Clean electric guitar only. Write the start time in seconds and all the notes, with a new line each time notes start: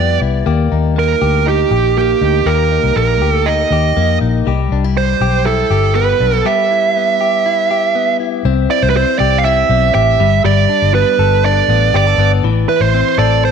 Already playing: G3 B3 E4 G4
0.21 E4
0.46 A#3 G4
0.72 D#4
0.96 A#3
1.22 G4
1.46 D#4
1.71 G4
1.97 A#3
2.21 D#4
2.46 A#3 G4
2.71 D#4
2.96 A#3
3.22 G4
3.47 D#4
3.72 G4
3.97 A#3
4.21 D#4
4.47 G3 G4
4.72 D4
4.84 E4
5.22 G4
5.45 E4
5.71 G4
5.95 B3
6.20 D4
6.33 E4
6.45 G3 G4
6.71 E4
6.96 B3
7.21 G4
7.46 E4
7.71 G4
7.95 B3
8.20 E4
8.45 C4
8.70 E4
8.95 C4
9.20 G4
9.45 E4
9.70 C4
9.95 G4
10.20 G3
10.44 G3
10.69 D4
10.94 B3
11.19 A4
11.45 D4
11.69 B3
11.94 G4
12.07 A4
12.19 B3
12.44 E3
12.69 E4
12.94 C4
13.18 A4